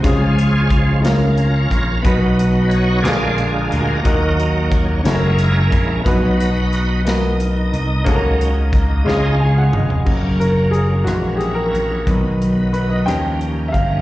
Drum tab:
CC |------------|------------|------------|------------|
HH |x-x-x-x-x-x-|x-x-x-x-x-x-|x-x-x-x-x-x-|x-x-x-x-x-x-|
SD |------o-----|------o-----|------o-----|------o-----|
T2 |------------|------------|------------|------------|
FT |------------|------------|------------|------------|
BD |o---o-----o-|o-----------|o---o-----o-|o-----------|

CC |------------|x-----------|------------|
HH |x-x-x-------|--x-x-x-x-x-|x-x-x-x-x-x-|
SD |------o-----|------r-----|------r-----|
T2 |----------o-|------------|------------|
FT |-----------o|------------|------------|
BD |o---o-------|o-----------|o---------o-|